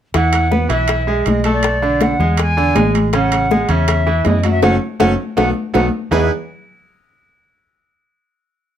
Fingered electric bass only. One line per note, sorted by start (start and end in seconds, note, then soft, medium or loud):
0.15 0.67 E2 medium
0.70 1.22 B1 medium
1.26 2.14 B1 medium
2.19 2.72 E2 medium
2.76 3.64 A1 medium
3.69 4.21 E2 medium
4.26 4.60 F#2 medium
4.63 4.77 F#1 loud
5.01 5.14 F#1 medium
5.38 5.52 B1 medium
5.75 5.89 B1 loud
6.11 6.29 E2 medium